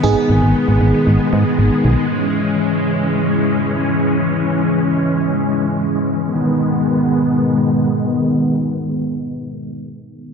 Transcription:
Already playing: D#3 G#3 B3
0.03 G#1 B3 D#4 G#4
0.29 G#1
0.42 G#1
0.68 G#1
0.81 G#1
1.07 G#1
1.33 G#2
1.59 G#1
1.84 B1
2.10 E3 C#4
6.24 D#3 G#3 B3

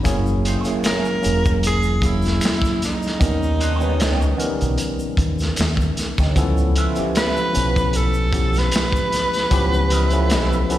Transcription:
0.03 F#1 F#3 A#3 C#4 E4 G#4, kick, closed hi-hat, shaker
0.26 shaker
0.45 A3 D#4 G4 C5, closed hi-hat
0.60 F#3 A#3 E4 G#4 C#5
0.65 A#3 C#4 E4 G#4, closed hi-hat, shaker
0.69 muted fingered electric bass stroke
0.84 A#3 E4 G#4 A#4 C#5, finger snap, snare, closed hi-hat, shaker
1.05 shaker
1.22 F#3 A#3 C#4 E4 G#4, closed hi-hat, shaker
1.26 E1
1.45 kick, shaker
1.63 G#4, closed hi-hat, shaker
1.83 shaker
2.01 F#3 A#3 C#4 E4 G#4, kick, closed hi-hat
2.22 closed hi-hat, shaker
2.27 snare
2.41 finger snap, closed hi-hat, shaker
2.45 snare
2.62 kick, snare, shaker
2.82 D#4, snare, closed hi-hat, shaker
3.02 shaker
3.07 snare
3.19 D#2 G3 B3 C#4 D#4 A#4, kick, closed hi-hat, shaker
3.43 shaker
3.60 A#3 D4 F#4 C5, closed hi-hat
3.75 B3 D#4 G4 C#5
3.80 G3 B3 C#4 D#4 B4, shaker
3.98 C#2 B3 D#4 G4 C#5, finger snap, snare, closed hi-hat, shaker
4.22 shaker
4.37 E3 B3 C#4 D#4 A#4, closed hi-hat, shaker
4.43 G3
4.61 B1, closed hi-hat, shaker
4.78 closed hi-hat, shaker
4.99 shaker
5.17 D#2, kick, closed hi-hat
5.39 snare, closed hi-hat, shaker
5.56 D#2, finger snap, closed hi-hat, shaker
5.61 snare
5.77 kick, shaker
5.97 snare, closed hi-hat, shaker
6.18 D2 B3 D#4 G4 C#5, kick, snare, shaker
6.36 C#2 F3 B3 C#4 E4 A4, kick, closed hi-hat, shaker
6.57 shaker
6.76 C#4 F4 B4 E5, closed hi-hat
6.95 F3 B3 C#4 E4 G4, muted fingered electric bass stroke, closed hi-hat, shaker
7.15 C#4 F4 B4 E5, finger snap, snare, closed hi-hat, shaker
7.36 shaker
7.53 B1 F3 B3 C#4 E4 B4, closed hi-hat, shaker
7.76 kick, shaker
7.93 A4, closed hi-hat, shaker
8.14 shaker
8.32 F3 B3 C#4 E4 G4, kick, closed hi-hat
8.53 closed hi-hat, shaker
8.57 B4, snare
8.71 finger snap, closed hi-hat, shaker
8.76 snare
8.92 kick, shaker
9.12 snare, closed hi-hat, shaker
9.33 snare, closed hi-hat, shaker
9.50 C#2 F3 B3 C#4 E4 G4, kick, closed hi-hat, shaker
9.73 shaker
9.90 C4 E4 A#4 D#5, closed hi-hat
10.07 C#4 F4 B4 E5, closed hi-hat
10.12 F3 B3 C#4 E4 A4, shaker
10.30 B1 C#4 F4 B4 E5, finger snap, snare, closed hi-hat, shaker
10.53 shaker
10.69 F3 B3 C#4 E4 A4, closed hi-hat, shaker

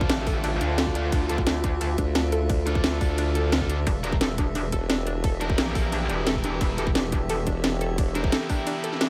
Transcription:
Already playing: D3 A3 D4 F4 A4 E5
0.01 kick
0.10 A1 D4, snare, closed hi-hat, ride
0.27 A4, kick, open hi-hat
0.44 D4, closed hi-hat, ride
0.61 D2 D4, closed hi-hat
0.78 A4, snare, closed hi-hat, ride
0.87 kick
0.95 D4, closed hi-hat
1.12 D2 D4, kick, closed hi-hat, ride
1.29 D4 F4 A4, closed hi-hat
1.38 kick
1.47 D4, snare, closed hi-hat, ride
1.64 D4, kick, closed hi-hat
1.81 A4, closed hi-hat, ride
1.98 D2 D4, kick, closed hi-hat
2.15 D4, snare, closed hi-hat, ride
2.32 A4, closed hi-hat
2.49 D4, kick, closed hi-hat, ride
2.66 D4 F4 A4, closed hi-hat
2.75 kick
2.84 D2 A4, snare, closed hi-hat, ride
3.01 D2 D4, kick, open hi-hat
3.18 D4, closed hi-hat, ride
3.35 A4, closed hi-hat
3.52 D4, snare, closed hi-hat, ride
3.61 D4 F4 A4, kick
3.70 D4, closed hi-hat
3.87 E1 E3 B3 D4 G4, kick, closed hi-hat, ride
4.03 D4 E4 G4 A#4, closed hi-hat
4.12 kick
4.21 A4, snare, closed hi-hat, ride
4.38 D4, kick, closed hi-hat
4.55 D4, closed hi-hat, ride
4.72 E1 A4, kick, closed hi-hat
4.90 D4, snare, closed hi-hat, ride
5.07 D4, closed hi-hat
5.24 A4, kick, closed hi-hat, ride
5.41 D4 E4 G4 A#4, closed hi-hat
5.50 kick
5.58 A#1 D4, snare, closed hi-hat, ride
5.75 A4, kick, open hi-hat
5.92 D4, closed hi-hat, ride
6.09 E1 D4, closed hi-hat
6.27 A4, snare, closed hi-hat, ride
6.35 kick
6.44 D4, closed hi-hat
6.61 E1 D4, kick, closed hi-hat, ride
6.78 E4 G4 A4 A#4, closed hi-hat
6.87 kick
6.95 D4, snare, closed hi-hat, ride
7.12 D4, kick, closed hi-hat
7.29 A4, closed hi-hat, ride
7.47 E1 D4, kick, closed hi-hat
7.64 D4, snare, closed hi-hat, ride
7.81 A4, closed hi-hat
7.98 D4, kick, closed hi-hat, ride
8.15 D4 E4 G4 A#4, closed hi-hat
8.24 kick
8.32 A4, snare, closed hi-hat, ride
8.49 D4, kick, open hi-hat
8.67 D4, closed hi-hat, ride
8.84 A4, closed hi-hat
8.92 snare
9.01 D4, snare, closed hi-hat, ride

